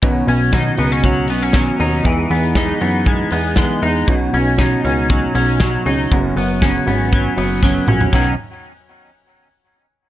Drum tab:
CC |----------------|----------------|----------------|----------------|
HH |x-o-x-o-x-o-x-o-|x-o-x-o-x-o-x-o-|x-o-x-o-x-o-x-o-|x-o-x-o-x-o-----|
SD |----o-------o---|----o-------o---|----o-------o---|----o-------o---|
T2 |----------------|----------------|----------------|--------------o-|
FT |----------------|----------------|----------------|---------------o|
BD |o---o---o---o---|o---o---o---o---|o---o---o---o---|o---o---o---o---|

CC |x---------------|
HH |----------------|
SD |----------------|
T2 |----------------|
FT |----------------|
BD |o---------------|